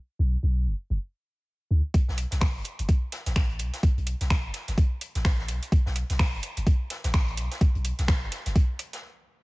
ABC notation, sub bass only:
X:1
M:4/4
L:1/16
Q:"Swing 16ths" 1/4=127
K:Bm
V:1 name="Sub bass" clef=bass
z B,,,2 B,,,2 F,,, z F,,, z6 D,, z | z B,,,2 B,,,2 F,,, z F,,, z3 A,,,3 B,,, z | z B,,,2 B,,,2 F,,, z F,,, z3 A,,,3 B,,, z | z B,,,2 B,,,2 F,,, z F,,, z3 A,,,3 B,,, z |
z B,,,2 B,,,2 F,,, z F,,, z8 |]